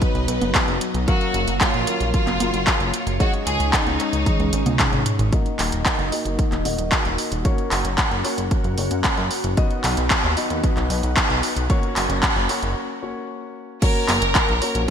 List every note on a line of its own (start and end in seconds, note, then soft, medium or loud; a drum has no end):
0.00 0.25 F#3 medium
0.00 3.16 F#3 medium
0.00 0.25 B3 medium
0.00 1.06 B3 medium
0.00 0.25 D#4 medium
0.00 1.06 D#4 medium
0.00 0.25 B4 medium
0.00 0.77 B4 medium
0.00 1.06 D#5 medium
0.00 kick loud
0.00 closed hi-hat medium
0.15 0.27 B1 medium
0.15 closed hi-hat soft
0.28 0.40 B1 medium
0.28 1.05 F#3 medium
0.28 1.05 B3 medium
0.28 1.05 D#4 medium
0.28 1.05 B4 medium
0.28 closed hi-hat medium
0.41 0.53 F#1 medium
0.41 closed hi-hat medium
0.41 high conga medium
0.55 kick loud
0.55 clap loud
0.55 closed hi-hat medium
0.68 0.80 F#1 medium
0.68 closed hi-hat soft
0.81 closed hi-hat medium
0.94 1.06 B1 medium
0.94 closed hi-hat medium
1.08 1.84 F#3 medium
1.08 3.18 A#3 medium
1.08 1.84 C#4 medium
1.08 1.57 F#4 medium
1.08 1.84 A#4 loud
1.08 5.29 C#5 medium
1.08 1.84 F5 medium
1.08 3.18 F5 medium
1.08 kick loud
1.08 closed hi-hat medium
1.21 closed hi-hat soft
1.34 1.46 F#1 loud
1.34 closed hi-hat medium
1.48 1.60 F#1 medium
1.48 closed hi-hat medium
1.61 2.13 F4 medium
1.61 kick loud
1.61 clap loud
1.61 closed hi-hat medium
1.74 1.86 A#1 medium
1.74 closed hi-hat soft
1.87 2.37 F#3 medium
1.87 2.37 C#4 medium
1.87 2.37 F4 medium
1.87 2.37 A#4 medium
1.87 closed hi-hat medium
2.00 2.13 A#1 medium
2.00 closed hi-hat medium
2.14 3.16 F4 loud
2.14 kick loud
2.14 closed hi-hat medium
2.27 2.39 F#1 medium
2.27 clap soft
2.27 closed hi-hat soft
2.27 high conga medium
2.40 2.52 F#1 medium
2.40 3.17 F#3 medium
2.40 3.17 C#4 medium
2.40 3.17 F4 medium
2.40 3.17 A#4 medium
2.40 closed hi-hat medium
2.40 high conga medium
2.54 2.66 F#1 medium
2.54 closed hi-hat medium
2.67 kick loud
2.67 clap loud
2.67 closed hi-hat medium
2.80 2.92 F#1 medium
2.80 closed hi-hat soft
2.94 closed hi-hat medium
3.07 3.19 F#1 medium
3.07 closed hi-hat medium
3.20 3.97 G#3 loud
3.20 5.30 G#3 medium
3.20 3.97 C#4 medium
3.20 5.30 C#4 medium
3.20 5.30 D#4 medium
3.20 3.97 D#4 medium
3.20 3.32 F#4 loud
3.20 3.97 C#5 loud
3.20 kick loud
3.20 closed hi-hat medium
3.34 closed hi-hat soft
3.47 3.59 C#2 loud
3.47 3.71 G#4 loud
3.47 closed hi-hat loud
3.60 3.72 C#2 medium
3.60 closed hi-hat medium
3.73 4.80 D#4 loud
3.73 kick loud
3.73 clap loud
3.73 closed hi-hat medium
3.86 3.98 C#2 medium
3.86 closed hi-hat soft
3.86 high conga medium
4.00 4.50 G#3 medium
4.00 4.50 C#4 medium
4.00 4.50 D#4 medium
4.00 4.50 C#5 medium
4.00 clap soft
4.00 closed hi-hat medium
4.13 4.25 C#2 medium
4.13 closed hi-hat medium
4.26 kick loud
4.26 closed hi-hat medium
4.26 high tom medium
4.40 4.52 C#2 medium
4.40 closed hi-hat soft
4.40 high tom medium
4.53 4.65 G#1 medium
4.53 5.29 G#3 medium
4.53 5.29 C#4 medium
4.53 5.29 D#4 medium
4.53 5.29 C#5 medium
4.53 closed hi-hat medium
4.66 4.78 C#2 medium
4.66 closed hi-hat medium
4.66 mid tom medium
4.66 high conga medium
4.79 kick loud
4.79 clap loud
4.79 closed hi-hat medium
4.79 mid tom medium
4.93 5.05 G#1 medium
4.93 closed hi-hat soft
4.93 mid tom medium
5.06 closed hi-hat loud
5.06 mid tom medium
5.19 5.31 G#1 medium
5.19 closed hi-hat medium
5.19 mid tom medium
5.32 6.09 A#3 medium
5.32 7.43 A#3 medium
5.32 6.09 D#4 medium
5.32 7.43 D#4 medium
5.32 6.09 F#4 medium
5.32 11.66 F#4 medium
5.32 6.09 D#5 loud
5.32 7.43 D#5 medium
5.32 kick loud
5.32 closed hi-hat medium
5.46 closed hi-hat soft
5.59 5.71 D#1 loud
5.59 clap medium
5.59 open hi-hat loud
5.72 5.84 D#1 medium
5.72 closed hi-hat medium
5.86 kick loud
5.86 clap loud
5.86 closed hi-hat medium
5.99 6.11 F#1 medium
5.99 closed hi-hat soft
6.12 6.62 A#3 medium
6.12 6.62 D#4 medium
6.12 6.62 F#4 medium
6.12 6.62 D#5 medium
6.12 open hi-hat loud
6.25 6.37 F#1 medium
6.25 closed hi-hat medium
6.39 kick loud
6.39 closed hi-hat medium
6.52 6.64 D#1 medium
6.52 clap soft
6.52 closed hi-hat soft
6.52 high conga medium
6.65 6.77 D#1 medium
6.65 7.42 A#3 medium
6.65 7.42 D#4 medium
6.65 7.42 F#4 medium
6.65 7.42 D#5 medium
6.65 open hi-hat loud
6.65 high conga medium
6.78 6.91 D#1 medium
6.78 closed hi-hat medium
6.92 kick loud
6.92 clap loud
6.92 closed hi-hat medium
7.05 7.17 D#1 medium
7.05 closed hi-hat soft
7.18 open hi-hat loud
7.32 7.44 D#1 medium
7.32 closed hi-hat medium
7.45 8.21 A#3 medium
7.45 8.21 C#4 medium
7.45 9.55 C#4 medium
7.45 8.21 F#4 medium
7.45 9.55 A#4 medium
7.45 8.21 C#5 loud
7.45 12.72 F#5 medium
7.45 kick loud
7.45 closed hi-hat medium
7.58 closed hi-hat soft
7.71 7.84 F#1 medium
7.71 clap medium
7.71 open hi-hat loud
7.85 7.97 F#1 medium
7.85 closed hi-hat medium
7.98 kick loud
7.98 clap loud
7.98 closed hi-hat medium
8.11 8.23 F#1 medium
8.11 closed hi-hat soft
8.24 8.74 A#3 medium
8.24 8.74 C#4 medium
8.24 8.74 F#4 medium
8.24 8.74 C#5 medium
8.24 clap soft
8.24 open hi-hat medium
8.38 8.50 F#1 medium
8.38 closed hi-hat medium
8.51 kick loud
8.51 closed hi-hat medium
8.64 8.76 F#1 medium
8.64 closed hi-hat soft
8.78 8.90 F#1 medium
8.78 9.54 A#3 medium
8.78 9.54 C#4 medium
8.78 9.54 F#4 medium
8.78 9.54 C#5 medium
8.78 open hi-hat loud
8.91 9.03 F#2 medium
8.91 closed hi-hat medium
8.91 high conga medium
9.04 kick loud
9.04 clap loud
9.04 closed hi-hat medium
9.17 9.30 F#2 medium
9.17 closed hi-hat soft
9.31 open hi-hat loud
9.44 9.56 F#1 medium
9.44 closed hi-hat medium
9.57 10.34 B3 medium
9.57 10.34 D#4 medium
9.57 11.68 D#4 medium
9.57 10.34 F#4 medium
9.57 11.68 B4 medium
9.57 10.34 D#5 loud
9.57 kick loud
9.57 closed hi-hat medium
9.71 closed hi-hat soft
9.84 9.96 B1 loud
9.84 clap medium
9.84 open hi-hat loud
9.97 10.09 B1 medium
9.97 closed hi-hat medium
10.10 kick loud
10.10 clap loud
10.10 closed hi-hat medium
10.24 10.36 D#2 medium
10.24 closed hi-hat soft
10.37 10.87 B3 medium
10.37 10.87 D#4 medium
10.37 10.87 F#4 medium
10.37 10.87 D#5 medium
10.37 open hi-hat medium
10.50 10.62 D#2 medium
10.50 closed hi-hat soft
10.64 kick loud
10.64 closed hi-hat medium
10.77 10.89 B1 medium
10.77 clap soft
10.77 closed hi-hat soft
10.77 high conga medium
10.90 11.02 B1 medium
10.90 11.67 B3 medium
10.90 11.67 D#4 medium
10.90 11.67 F#4 medium
10.90 11.67 D#5 medium
10.90 open hi-hat loud
10.90 high conga medium
11.03 11.15 B1 medium
11.03 closed hi-hat soft
11.17 kick loud
11.17 clap loud
11.17 closed hi-hat soft
11.30 11.42 B1 medium
11.30 closed hi-hat soft
11.43 open hi-hat loud
11.56 11.68 B1 medium
11.56 closed hi-hat soft
11.70 12.46 A#3 medium
11.70 12.46 C#4 medium
11.70 12.75 C#4 medium
11.70 12.46 F#4 medium
11.70 12.75 F#4 medium
11.70 12.75 A#4 medium
11.70 12.46 C#5 loud
11.70 kick loud
11.70 closed hi-hat soft
11.83 closed hi-hat soft
11.96 12.08 F#1 loud
11.96 clap medium
11.96 open hi-hat loud
12.10 12.22 F#1 medium
12.10 closed hi-hat soft
12.23 kick loud
12.23 clap loud
12.23 closed hi-hat soft
12.36 12.48 F#1 medium
12.36 closed hi-hat soft
12.49 12.99 A#3 medium
12.49 12.99 C#4 medium
12.49 12.99 F#4 medium
12.49 12.99 C#5 medium
12.49 clap soft
12.49 open hi-hat loud
12.63 12.75 F#1 medium
12.63 closed hi-hat medium
13.02 13.79 A#3 medium
13.02 13.79 C#4 medium
13.02 13.79 F#4 medium
13.02 13.79 C#5 medium
13.82 14.59 A#3 medium
13.82 14.59 C#4 medium
13.82 14.59 F#4 medium
13.82 14.90 F#4 medium
13.82 14.84 A#4 loud
13.82 14.90 A#4 medium
13.82 14.59 C#5 loud
13.82 14.90 C#5 medium
13.82 14.90 A#5 medium
13.82 kick loud
13.82 closed hi-hat medium
13.82 crash loud
13.95 closed hi-hat soft
14.09 14.21 F#1 loud
14.09 clap medium
14.09 open hi-hat loud
14.09 high conga medium
14.22 14.34 F#1 medium
14.22 closed hi-hat medium
14.35 kick loud
14.35 clap loud
14.35 closed hi-hat medium
14.48 14.60 A#1 medium
14.48 closed hi-hat soft
14.62 14.90 A#3 medium
14.62 14.90 C#4 medium
14.62 14.90 F#4 medium
14.62 14.90 C#5 medium
14.62 open hi-hat loud
14.75 14.87 A#1 medium
14.75 closed hi-hat medium